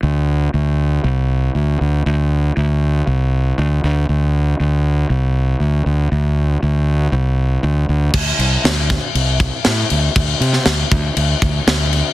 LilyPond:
<<
  \new Staff \with { instrumentName = "Fingered electric bass" } { \clef bass \time 4/4 \key c \dorian \tempo 4 = 118 d,4 d,4 c,4 d,8 d,8 | d,4 d,4 c,4 d,8 d,8 | d,4 d,4 c,4 d,8 d,8 | d,4 d,4 c,4 d,8 d,8 |
d,8 c,8 d,4 c,4 a,8 d,8 | d,8 c8 d,8 d,8 d,8 d,8 d,4 | }
  \new DrumStaff \with { instrumentName = "Drums" } \drummode { \time 4/4 r4 r4 r4 r4 | r4 r4 r4 r4 | r4 r4 r4 r4 | r4 r4 r4 r4 |
<cymc bd>8 cymc8 <cymc sn>8 <cymc bd sn>8 cymc8 <cymc bd>8 <cymc sn>8 cymc8 | <cymc bd>8 cymc16 sn16 <cymc sn>8 <cymc bd>8 cymc8 <cymc bd>8 <cymc sn>8 cymc8 | }
>>